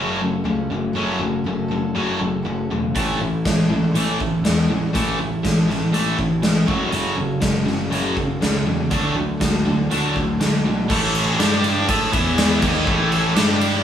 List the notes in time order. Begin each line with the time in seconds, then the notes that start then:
Already playing: F#1 F#2 C#3 F#3 A3 C#4 F#4 A4
0.20 F#2 C#3 F#3 A3 F#4 A4
0.24 C#4
0.44 C#2 F#2 C#3 F#3 A3 C#4 F#4 A4
0.70 F#1 F#2 C#3 F#3 A3
0.93 F#1 F#2 C#3 F#3 A3 C#4 F#4 A4
1.17 F#1 F#2 C#3 F#3 C#4 F#4 A4
1.22 A3
1.44 F#1 F#2 C#3 F#3 A3 C#4 F#4 A4
1.68 F#1 F#2 C#3 F#3 A3 C#4 F#4 A4
1.95 F#1 F#2 C#3 F#3 A3 C#4
2.18 F#1 F#2 C#3 F#3 A3 C#4 F#4 A4
2.43 F#1 F#2 C#3 F#3 A3 C#4 F#4 A4
2.70 E1 F#2 C#3 F#3 A3
2.95 A1 A2 E3 A3 C#4 E4 A4, kick, closed hi-hat
3.19 A1 A2 E3 A3 C#4 E4 A4
3.44 A1 A2 E3 A3 C#4 E4 A4, kick, snare, closed hi-hat
3.69 A1 A2 E3 A3 C#4 E4 A4
3.94 A1 A2 E3 A3, closed hi-hat
4.19 A2 E3 A3 C#4 E4 A4, kick
4.43 E2 A2 E3 A3 C#4 E4, snare, closed hi-hat
4.47 A4
4.70 A1 A2 E3
4.93 A1 A2 E3 A3 C#4 E4 A4, kick, closed hi-hat
5.17 A1 A2 E3 A3 C#4 E4 A4
5.42 A1 A2 E3 A3 C#4 E4 A4, kick, snare, closed hi-hat
5.68 A1 A2 E3 A3 C#4 E4 A4, snare
5.93 A1 A2 E3 A3, closed hi-hat
6.17 A1 A2 E3 A3 C#4 E4 A4, kick
6.43 A1 A2 E3 A3 C#4 E4 A4, snare, closed hi-hat
6.67 F#1 F#2 C#3 F#3 A3 C#4 F#4 A4, kick
6.92 F#1 F#2 C#3 F#3, closed hi-hat
7.16 F#1 F#2 C#3 C#4 F#4 A4
7.40 F#1 F#2 C#3 A3 C#4 F#4 A4, kick, snare, closed hi-hat
7.66 F#1 F#2 C#3 F#4 A4, snare
7.70 C#4
7.90 F#1 F#2 C#3 F#3, closed hi-hat
8.16 F#2 C#3 C#4 F#4 A4, kick
8.40 C#2 F#2 C#3 A3 C#4 F#4 A4, snare, closed hi-hat
8.65 E2 F#2 C#3
8.90 D2 D3 F#3 A3 D4 F#4 A4, kick, closed hi-hat
9.15 D2 D3 F#3 A3 D4 F#4 A4
9.37 D2 D3 F#3 A3 D4 F#4 A4, kick, snare, closed hi-hat
9.64 D2 D3 F#3 A3 D4 F#4 A4
9.91 D2 D3 F#3 A3 D4, closed hi-hat
10.14 D2 D3 F#3 A3 D4 F#4 A4, kick
10.37 D3 A3 D4 F#4 A4
10.41 D2 F#3 A3, snare, closed hi-hat
10.65 B1 D3 F#3 A3
10.90 A1 A2 E3 A3 E4 A4 C#5, kick, crash
11.15 ride
11.37 G2 G3 D4 G4 D5, snare, ride
11.64 ride
11.88 A2 A3 E4 A4, kick, ride
12.11 E2 E3 B3 E4 E5, kick, ride
12.16 B4
12.38 snare, ride
12.62 D#2 D#3 A#3 D#4 E4 A4 C#5, kick, crash
12.86 A1 A2 E3 A3, kick
13.12 ride
13.35 G2 G3 D4 G4 D5, snare, ride
13.61 ride